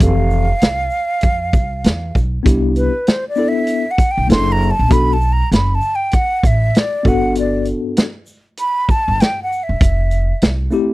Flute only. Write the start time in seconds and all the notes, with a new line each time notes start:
0.03 F5
2.77 B4
3.08 C5
3.29 D5
3.48 E5
3.91 F#5
4.11 G5
4.32 C6
4.52 A#5
4.71 A5
4.92 B5
5.13 A5
5.33 A#5
5.54 B5
5.75 A5
5.95 G5
6.15 F#5
6.47 E5
6.78 D5
7.08 F#5
7.39 D5
8.60 B5
8.91 A5
9.21 G5
9.43 F#5
9.63 E5